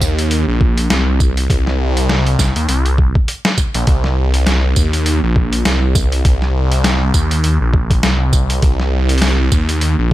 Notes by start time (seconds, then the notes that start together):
0.01 D#2, kick, tambourine
0.19 closed hi-hat
0.31 closed hi-hat
0.48 A#1
0.61 kick
0.78 closed hi-hat
0.90 C2, snare, closed hi-hat
1.20 kick, tambourine
1.37 closed hi-hat
1.50 C2, kick, closed hi-hat
1.67 snare
1.97 closed hi-hat
2.09 snare
2.27 closed hi-hat
2.39 C2, kick, snare, tambourine
2.56 D#2, closed hi-hat
2.69 C2, closed hi-hat
2.86 closed hi-hat
2.98 kick
3.15 kick
3.28 closed hi-hat
3.45 snare, closed hi-hat
3.58 kick, snare, tambourine
3.74 A#1, closed hi-hat
3.87 C2, kick, closed hi-hat
4.04 snare
4.34 closed hi-hat
4.47 snare, closed hi-hat
4.76 D#2, kick, tambourine
4.93 closed hi-hat
5.06 closed hi-hat
5.23 A#1
5.36 kick
5.53 closed hi-hat
5.65 C2, snare, closed hi-hat
5.95 kick, tambourine
6.12 closed hi-hat
6.25 C2, kick, closed hi-hat
6.42 snare
6.72 closed hi-hat
6.84 snare, closed hi-hat
7.14 D#2, kick, tambourine
7.31 closed hi-hat
7.44 closed hi-hat
7.61 A#1
7.74 kick
7.91 kick, closed hi-hat
8.03 C2, snare, closed hi-hat
8.33 kick, tambourine
8.50 closed hi-hat
8.62 C2, kick, closed hi-hat
8.80 snare
9.09 closed hi-hat
9.18 snare, closed hi-hat
9.22 closed hi-hat
9.28 closed hi-hat
9.52 D#2, kick, tambourine
9.69 closed hi-hat
9.81 closed hi-hat
9.99 A#1